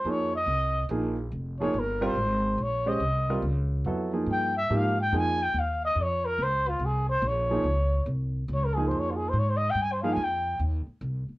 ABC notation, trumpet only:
X:1
M:3/4
L:1/16
Q:"Swing" 1/4=142
K:Bbdor
V:1 name="Trumpet"
d2 e6 z4 | z2 d2 B2 c6 | d2 e6 z4 | z4 g2 =e2 f2 g2 |
a2 g2 f2 e2 d2 B2 | c2 F2 A2 c2 d4- | d4 z4 d B A c | d F A c d c e g a c f a |
g4 z8 |]